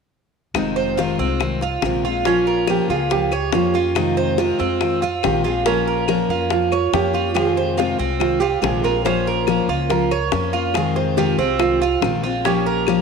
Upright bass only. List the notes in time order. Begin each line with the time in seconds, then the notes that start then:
0.54 F1
1.19 C2
1.82 A#1
2.88 C#2
3.53 F2
4.60 F2
5.24 A#1
6.29 F2
6.93 F2
7.99 C2
8.62 A#1
9.68 C#2
10.33 F2
11.38 C2
12.02 A#1